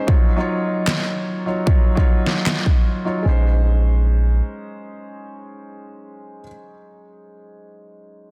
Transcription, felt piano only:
Already playing: G#3 D#4 C5
0.07 F#3 D#4 F4 C#5
0.36 F#3 D#4 F4 C#5
1.46 F#3 D#4 F4 C#5
1.66 F#3 D#4 F4 C#5
1.95 F#3 D#4 F4
1.99 C#5
3.05 F#3 D#4 F4 C#5
3.23 G#3 C#4 D#4
3.29 C5

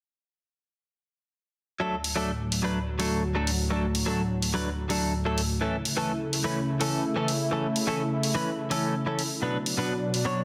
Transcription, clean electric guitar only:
1.80 F#3 A3 D4 A4
2.16 F#3 A3 D4 A4
2.63 F#3 A3 D4 B4
2.99 F#3 A3 D4 A4
3.35 F#3 A3 D4 A4
3.70 F#3 A3 D4 A4
4.06 F#3 A3 D4 A4
4.54 F#3 A3 D4 B4
4.89 F#3 A3 D4 A4
5.25 F#3 A3 D4 A4
5.61 E3 A3 C#4 A4
5.97 E3 A3 C#4 A4
6.44 E3 A3 C#4 B4
6.80 E3 A3 C#4 A4
7.16 E3 A3 C#4 A4
7.51 E3 A3 C#4 A4
7.87 E3 A3 C#4 A4
8.35 E3 A3 C#4 B4
8.70 E3 A3 C#4 A4
9.06 E3 A3 C#4 A4
9.42 B2 F#3 B3 D4 B4
9.77 B2 F#3 B3 D4 B4
10.25 B2 F#3 B3 D4 C#5

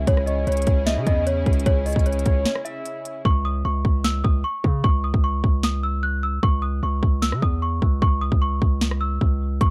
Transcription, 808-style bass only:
0.07 C#2
0.47 C#2
0.67 C#2
0.97 C#3
1.07 E2
1.46 C#2
1.66 C#2
1.96 C#2
2.26 C#2
3.25 C#2
3.65 C#2
3.85 C#2
4.24 C#2
4.64 C#3
4.84 C#2
5.14 C#2
5.44 C#2
6.43 C#2
6.83 C#2
7.03 C#2
7.32 C#3
7.42 E2
7.82 C#2
8.02 C#2
8.32 C#2
8.62 C#2
9.21 C#2
9.61 C#2

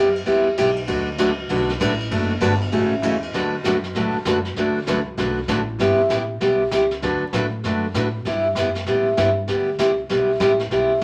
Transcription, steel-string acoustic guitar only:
0.26 G3 B3 E4 G4
0.58 G3 B3 E4 G4
0.87 D3 F#3 A3 D4 F#4 B4
1.18 D3 F#3 A3 D4 F#4 B4
1.49 D3 F#3 A3 D4 F#4 B4
1.80 D3 F#3 A3 D4 F#4 B4
2.11 D3 F#3 A3 D4 F#4 B4
2.41 D3 F#3 A3 D4 F#4 B4
2.72 C#3 E3 A3 C#4 F#4
3.03 C#3 E3 A3 C#4 F#4
3.33 D3 F#3 A3 D4 F#4 B4
3.65 D3 F#3 A3 D4 F#4 B4
3.96 D3 F#3 A3 D4 F#4 B4
4.26 D3 F#3 A3 D4 F#4 B4
4.57 D3 F#3 A3 D4 F#4 B4
4.87 D3 F#3 A3 D4 F#4 B4
5.17 D3 F#3 A3 D4 F#4 B4
5.48 D3 F#3 A3 D4 F#4 B4
5.80 G3 B3 E4 G4
6.10 G3 B3 E4 G4
6.41 G3 B3 E4 G4
6.72 G3 B3 E4 G4
7.03 D3 F#3 A3 D4 F#4 B4
7.34 D3 F#3 A3 D4 F#4 B4
7.65 D3 F#3 A3 D4 F#4 B4
7.95 D3 F#3 A3 D4 F#4 B4
8.26 G3 B3 E4 G4
8.58 G3 B3 E4 G4
8.87 G3 B3 E4 G4
9.17 G3 B3 E4 G4
9.48 G3 B3 E4 G4
9.79 G3 B3 E4 G4
10.10 G3 B3 E4 G4
10.40 G3 B3 E4 G4
10.71 G3 B3 E4 G4

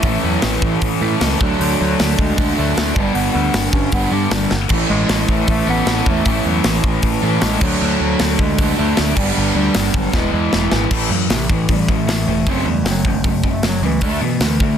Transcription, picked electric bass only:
0.03 A1
0.23 E2
0.43 A1
0.62 A1
0.82 A1
1.01 A2
1.21 C#2
1.41 D2
1.60 D2
1.81 D2
2.00 D2
2.19 D2
2.38 D2
2.58 D2
2.78 D2
2.96 G1
3.14 G1
3.35 D2
3.54 G1
3.73 G1
3.92 G1
4.11 G2
4.31 G1
4.52 G1
4.70 A1
4.90 A1
5.10 A1
5.28 A1
5.48 A1
5.67 A1
5.86 A1
6.07 E2
6.26 A1
6.45 E2
6.65 A1
6.83 A1
7.03 A1
7.23 A2
7.42 A1
7.61 D2
7.81 D2
8.00 D2
8.21 D2
8.39 D2
8.59 D2
8.79 D2
8.99 D2
9.16 G1
9.37 G1
9.55 D2
9.75 G1
9.94 G1
10.14 E1
10.33 E2
10.53 E1
10.72 G#1
10.91 A1
11.09 F#2
11.30 A1
11.50 A1
11.69 A1
12.07 A1
12.26 E1
12.47 F#1
12.65 E2
12.84 F#1
13.05 F#1
13.24 F#1
13.62 F#1
13.82 C#2
14.01 D2
14.21 B2
14.40 D2
14.60 D2

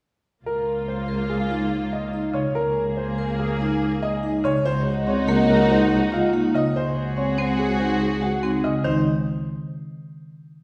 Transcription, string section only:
0.45 A#3 F4
2.55 A#3 G#4
4.66 D#4 F#4
6.75 F#4 G#4

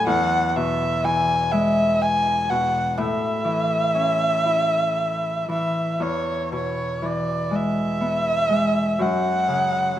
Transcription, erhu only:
0.07 F#5
0.49 F#5
0.56 E5
1.04 G#5
1.52 E5
2.01 G#5
2.49 F#5
2.97 E5
5.52 E5
6.02 C#5
6.55 C#5
7.05 D5
7.55 E5
9.01 F#5

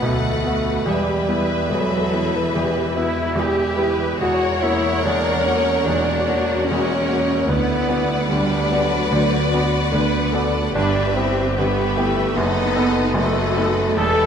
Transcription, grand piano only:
Already playing: B1 B2 B3 F#4
0.02 B1 B2
0.44 B3 F#4
0.85 E1 E2
1.28 B3 E4
1.71 E1 E2
2.14 B3 E4
2.55 E1 E2
2.97 B3 E4
3.35 E1 E2
3.78 B3 E4
4.21 E1 E2
4.63 A#3 C#4 F#4
5.05 E1 E2
5.46 A#3 C#4 F#4
5.86 E1 E2
6.28 A#3 C#4 F#4
6.70 E1 E2
7.08 A#3 C#4 F#4
7.47 D2 D3
7.89 B3 D4 F#4
8.31 D2 D3
8.71 B3 D4 F#4
9.11 D2 D3
9.54 B3 D4 F#4
9.93 D2 D3
10.34 B3 D4 F#4
10.75 G1 G2
11.16 B3 E4 G4
11.58 G1 G2
11.97 B3 E4 G4
12.37 F#1 F#2
12.76 B3 D#4 A4
13.14 F#1 F#2
13.57 B3 D#4 A4
13.96 E1 E2

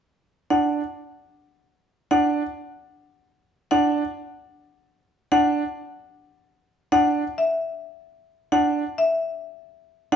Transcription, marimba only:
0.50 F#5
2.11 F#5
3.71 F#5
5.32 F#5
6.92 F#5
7.38 E5
8.52 F#5
8.98 E5
10.12 F#5

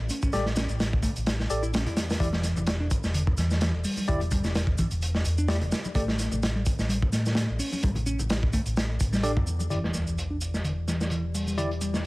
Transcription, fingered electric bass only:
0.33 A1
0.70 A1
1.17 A1
1.50 A1
1.86 E2
2.20 E1
2.57 E1
3.03 E1
3.37 E2
3.74 E1
4.08 E1
4.44 E1
4.91 E1
5.25 E2
5.62 E1
5.95 A1
6.32 A1
6.79 A1
7.13 A2
7.49 A1
7.84 A1
8.19 A1
8.66 A1
9.00 A1
9.37 E2
9.70 E1

